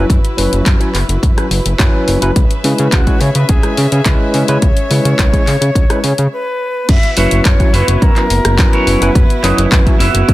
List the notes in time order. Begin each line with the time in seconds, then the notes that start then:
Already playing: E4 F#4 B4
0.10 F#2, kick, closed hi-hat
0.25 closed hi-hat
0.37 F#1 F#3 C#4 E4 B4, open hi-hat
0.53 F#1, closed hi-hat
0.66 F#2, kick, clap, closed hi-hat
0.80 F#3 C#4 E4 C#5, closed hi-hat
0.94 F#1, clap, open hi-hat
1.09 F#1, closed hi-hat
1.23 F#2, kick, closed hi-hat
1.37 F#3 C#4 E4 B4, cross-stick, closed hi-hat
1.51 F#1, open hi-hat
1.66 F#1, closed hi-hat
1.79 F#2 F#3 C#4 E4 B4, kick, clap, closed hi-hat
2.08 F#1, open hi-hat
2.22 F#1 F#3 C#4 E4 B4, closed hi-hat
2.36 C#2 C#4 G#4 E5, kick, closed hi-hat
2.51 closed hi-hat
2.64 C#3 G#3 C#4 E4 B4, open hi-hat
2.78 C#3, closed hi-hat
2.92 C#2 F#4, kick, clap, closed hi-hat
3.07 G#3 C#4 E4 C#5, kick, closed hi-hat
3.21 C#3 C#5, open hi-hat
3.35 C#3 B4, closed hi-hat
3.49 C#2 G#4, kick, closed hi-hat
3.63 G#3 C#4 E4 B4, cross-stick, closed hi-hat
3.77 C#3, open hi-hat
3.92 C#3 G#4, closed hi-hat
4.05 C#2 G#3 C#4 E4 B4, kick, clap, closed hi-hat
4.34 C#3 C#5, open hi-hat
4.48 C#3 G#3 C#4 E4 B4, closed hi-hat
4.62 C#2 C#5, kick, closed hi-hat
4.77 closed hi-hat
4.90 C#3 G#3 C#4 E4 B4, open hi-hat
5.05 C#3, closed hi-hat
5.19 C#2, kick, clap, closed hi-hat
5.33 G#3 C#4 E4 C#5, kick, closed hi-hat
5.47 C#3, clap, open hi-hat
5.61 C#3, closed hi-hat
5.75 C#2, kick, closed hi-hat
5.89 G#3 C#4 E4 B4, cross-stick, closed hi-hat
6.04 C#3, open hi-hat
6.18 C#3, closed hi-hat
6.33 B4
6.88 F#2 B3 E4 F#4 E5, kick, closed hi-hat, crash
7.03 closed hi-hat
7.17 F#1 F#3 C#4 E4 F#4 B4 C#5 E5, open hi-hat
7.31 F#1, closed hi-hat
7.45 F#2 C#5, kick, clap, closed hi-hat
7.59 F#3 C#4 E4 C#5, muted clean electric guitar stroke, kick, closed hi-hat
7.73 F#1 E4 F#4 B4 C#5, open hi-hat
7.88 F#1, closed hi-hat
8.02 F#2 A#4, kick, closed hi-hat
8.16 F#3 C#4 E4 B4, clap, closed hi-hat
8.30 F#1, open hi-hat
8.45 F#1, cross-stick, closed hi-hat
8.58 F#2 F#3 C#4 E4 B4, kick, clap, closed hi-hat
8.73 E4 F#4 B4 C#5, closed hi-hat
8.87 F#1 B4, open hi-hat
9.01 F#1 F#3 C#4 E4 B4, closed hi-hat
9.15 F#2, kick, closed hi-hat
9.30 closed hi-hat
9.43 F#1 F#3 C#4 E4 F#4 B4 D#5, clap, open hi-hat
9.58 F#1, closed hi-hat
9.72 F#2, kick, clap, closed hi-hat
9.86 F#3 C#4 E4 C#5, muted clean electric guitar stroke, kick, closed hi-hat
9.99 F#1 E4 F#4 B4 E5, open hi-hat
10.14 F#1, closed hi-hat
10.29 F#2, kick, closed hi-hat